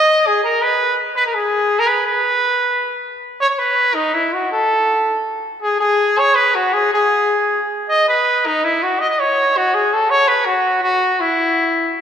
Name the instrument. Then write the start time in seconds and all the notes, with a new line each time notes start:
trumpet
Already playing: D#5
0.27 G#4
0.44 A#4
0.62 B4
1.16 B4
1.27 A#4
1.34 G#4
1.79 A#4
1.87 B4
2.06 B4
3.41 C#5
3.50 C#5
3.59 B4
3.94 D#4
4.14 E4
4.33 F#4
4.52 A4
5.62 G#4
5.80 G#4
6.18 C#5
6.35 B4
6.55 F#4
6.73 G#4
6.94 G#4
7.89 D#5
8.09 B4
8.46 D#4
8.64 E4
8.83 F#4
9.00 D#5
9.09 D#5
9.20 C#5
9.57 F#4
9.74 G#4
9.94 A4
10.10 C#5
10.28 B4
10.45 F#4
10.83 F#4
11.20 E4